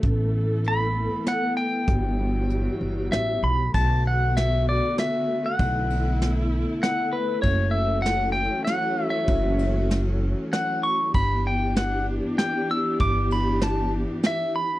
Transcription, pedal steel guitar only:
X:1
M:3/4
L:1/16
Q:1/4=97
K:Bm
V:1 name="Pedal steel guitar"
z4 b4 f2 g2- | g8 e2 b2 | a2 f2 e2 d2 e3 f- | f4- f z3 f2 B2 |
c2 e2 f2 g2 f3 e- | e4- e z3 f2 c'2 | b2 g2 f2 z2 g2 e'2 | d'2 b2 a2 z2 e2 b2 |]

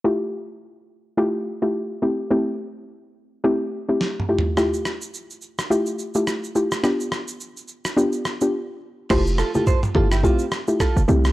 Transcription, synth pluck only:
X:1
M:4/4
L:1/16
Q:"Swing 16ths" 1/4=106
K:Flyd
V:1 name="Synth pluck"
[A,EFG]4 z4 [A,EFG]3 [A,EFG]3 [A,CEG]2 | [A,CEG]4 z4 [A,CEG]3 [A,CEG]3 [A,EFG]2 | [A,EFG]4 z4 [A,EFG]3 [A,EFG]3 [A,EFG]2 | [B,DFG]4 z4 [B,DFG]3 [B,DFG] z4 |
[A,EFG]3 [A,EFG] z2 [A,EFG] z [A,EFG] z2 [A,EFG] z2 [A,CEG]2 |]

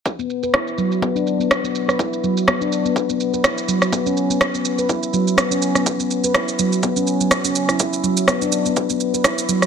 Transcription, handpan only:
X:1
M:4/4
L:1/16
Q:"Swing 16ths" 1/4=124
K:F#phr
V:1 name="Handpan"
z B, z B E z F, z B, D z B, z B, z B | E z F, z B, D z B, z B, z B E z F, z | B, C z B, z B, z B E z F, z B, C z B, | z B, z B E z F, z B, C z F, z C z E |
E z F, z B, D z B, z B, z B E z F, z |]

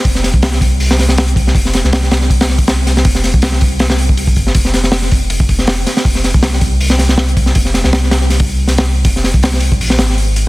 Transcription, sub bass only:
X:1
M:4/4
L:1/16
Q:"Swing 16ths" 1/4=160
K:Fm
V:1 name="Sub bass" clef=bass
F,,,3 C,,12- C,, | F,,,3 C,,12- C,, | F,,,3 C,,8- C,,3 G,,,2 | F,,,8- F,,,2 F,,,4 z2 |
F,,,3 C,,12- C,, | F,,,3 C,,12- C,, | F,,,3 C,,4- C,, B,,,2 A,,,6 |]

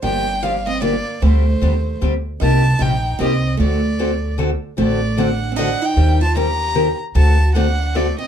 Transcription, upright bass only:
X:1
M:3/4
L:1/8
Q:"Swing" 1/4=152
K:Dphr
V:1 name="Upright bass" clef=bass
G,,,6 | D,,2 E,,2 D,,2 | C,,2 B,,,2 C,,2 | D,,6 |
A,,,6 | E,,6 | D,,6 |]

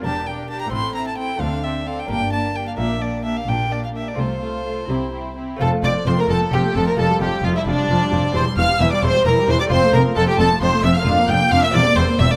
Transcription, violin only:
X:1
M:6/8
L:1/16
Q:3/8=87
K:F
V:1 name="Violin"
a2 g2 a b c'2 b a g2 | f2 e2 f g g2 a2 g f | e2 d2 e f g2 d f e d | c8- c2 z2 |
A2 d2 c B A2 G2 A B | A2 G2 F E D6 | c2 f2 e d c2 B2 c d | c2 B2 A G A2 c2 e f- |
f2 g2 f e d2 c2 e d |]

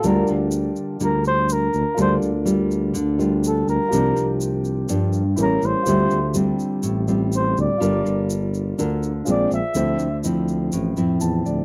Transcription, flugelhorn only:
X:1
M:4/4
L:1/8
Q:1/4=124
K:Gdor
V:1 name="Flugelhorn"
B z3 B c B2 | c z4 z A B- | B2 z4 B c- | c2 z4 c d- |
d2 z4 d e- | e2 z6 |]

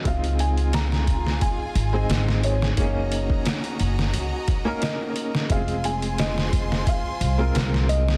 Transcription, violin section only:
X:1
M:4/4
L:1/8
Q:"Swing 16ths" 1/4=88
K:Db
V:1 name="Violin section"
[FAa]8 | [Geb]8 | [Fcac']8 |]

